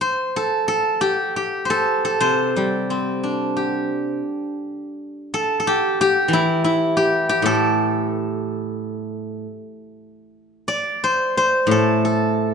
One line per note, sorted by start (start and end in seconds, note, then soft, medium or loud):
0.01 1.65 C5 medium
0.36 0.68 A4 medium
0.68 1.70 A4 medium
1.01 1.36 G4 medium
1.36 3.56 G4 medium
1.65 2.20 C5 medium
1.70 2.04 A4 medium
2.05 4.24 A4 medium
2.20 4.20 C3 soft
2.20 4.19 C5 medium
2.56 3.88 G3 soft
2.90 4.21 C4 soft
3.23 4.54 D4 soft
3.57 4.86 G4 soft
5.34 5.59 A4 medium
5.60 7.45 A4 medium
5.67 6.00 G4 medium
6.01 6.96 G4 medium
6.28 8.24 E3 medium
6.33 6.64 E4 medium
6.64 9.25 E4 medium
6.97 7.29 G4 medium
7.29 9.65 G4 medium
7.42 9.44 A2 soft
7.42 9.65 A4 medium
10.68 12.53 D5 medium
11.04 11.37 C5 medium
11.37 12.54 C5 medium
11.67 12.54 A2 medium
11.71 12.04 A4 medium
12.05 12.54 A4 medium